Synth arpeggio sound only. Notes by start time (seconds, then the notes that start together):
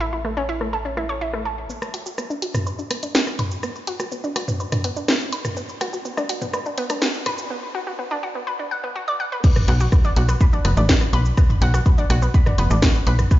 0.00 E4
0.13 E4
0.25 A3
0.37 C#4
0.49 E4
0.61 A3
0.73 A4
0.85 C#4
0.97 E4
1.09 C#5
1.21 E4
1.34 A3
1.45 A4
1.70 B3
1.94 F#4
2.06 F#4
2.18 B3
2.30 D4
2.42 F#4
2.55 B3
2.67 B4
2.79 D4
2.91 B3
3.03 D4
3.15 F#4
3.39 B4
3.63 B3
3.88 F#4
4.00 F#4
4.12 B3
4.24 D4
4.36 F#4
4.48 B3
4.60 B4
4.72 D4
4.84 B3
4.96 D4
5.08 F#4
5.32 B4
5.57 B3
5.81 F#4
5.93 F#4
6.05 B3
6.17 D4
6.29 F#4
6.42 B3
6.54 B4
6.66 D4
6.78 B3
6.90 D4
7.02 F#4
7.26 B4
7.50 B3
7.75 F#4
7.87 F#4
7.99 B3
8.11 D4
8.23 F#4
8.35 B3
8.47 B4
8.59 D4
8.71 F#5
8.84 B3
8.96 F#4
9.08 D5
9.20 F#5
9.32 B4
9.44 B3 B4
9.68 F#4 F#5
9.80 F#4 F#5
9.92 B3 B4
10.05 D4 D5
10.17 F#4 F#5
10.29 B3 B4
10.41 B4 B5
10.53 D4 D5
10.65 B3 B4
10.77 D4 D5
10.89 F#4 F#5
11.13 B4 B5
11.37 B3 B4
11.62 F#4 F#5
11.74 F#4 F#5
11.86 B3 B4
11.98 D4 D5
12.10 F#4 F#5
12.22 B3 B4
12.34 B4 B5
12.47 D4 D5
12.58 B3 B4
12.71 D4 D5
12.83 F#4 F#5
13.07 B4 B5
13.31 B3 B4